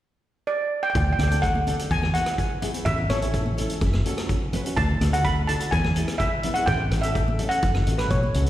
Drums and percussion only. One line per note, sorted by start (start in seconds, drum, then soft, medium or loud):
0.95 kick loud
0.95 closed hi-hat medium
1.19 cross-stick medium
1.19 closed hi-hat medium
1.19 high conga medium
1.31 closed hi-hat medium
1.43 kick medium
1.43 closed hi-hat medium
1.55 high conga medium
1.67 closed hi-hat medium
1.67 low conga medium
1.79 closed hi-hat medium
1.91 kick loud
1.91 closed hi-hat medium
2.03 cross-stick medium
2.03 high conga medium
2.14 closed hi-hat medium
2.26 cross-stick medium
2.26 closed hi-hat medium
2.38 kick medium
2.38 closed hi-hat medium
2.62 closed hi-hat medium
2.62 low conga medium
2.74 closed hi-hat medium
2.86 kick loud
2.86 closed hi-hat medium
3.10 cross-stick medium
3.10 closed hi-hat medium
3.10 high conga medium
3.22 closed hi-hat medium
3.34 kick medium
3.34 closed hi-hat medium
3.46 high conga medium
3.58 closed hi-hat medium
3.58 low conga medium
3.70 closed hi-hat medium
3.81 kick loud
3.81 closed hi-hat soft
3.93 cross-stick medium
3.93 high conga medium
4.06 closed hi-hat medium
4.18 cross-stick medium
4.18 closed hi-hat medium
4.29 kick medium
4.29 closed hi-hat medium
4.53 closed hi-hat medium
4.53 low conga medium
4.66 closed hi-hat medium
4.77 kick loud
4.77 closed hi-hat medium
5.01 cross-stick medium
5.01 closed hi-hat medium
5.13 closed hi-hat medium
5.25 kick medium
5.25 closed hi-hat medium
5.49 closed hi-hat medium
5.60 closed hi-hat medium
5.72 kick loud
5.72 closed hi-hat medium
5.84 cross-stick medium
5.84 high conga medium
5.96 closed hi-hat medium
6.08 cross-stick medium
6.08 closed hi-hat medium
6.20 kick medium
6.20 closed hi-hat medium
6.43 closed hi-hat medium
6.43 low conga medium
6.55 closed hi-hat medium
6.67 kick loud
6.67 closed hi-hat medium
6.91 cross-stick medium
6.91 closed hi-hat medium
7.03 closed hi-hat medium
7.15 kick medium
7.15 closed hi-hat medium
7.28 high conga medium
7.39 closed hi-hat medium
7.39 low conga medium
7.51 closed hi-hat medium
7.62 kick medium
7.62 closed hi-hat medium
7.74 cross-stick medium
7.74 high conga medium
7.87 closed hi-hat medium
7.99 cross-stick medium
7.99 closed hi-hat medium
8.10 kick medium
8.10 closed hi-hat medium
8.10 high conga medium
8.23 high conga medium
8.34 closed hi-hat medium
8.46 closed hi-hat medium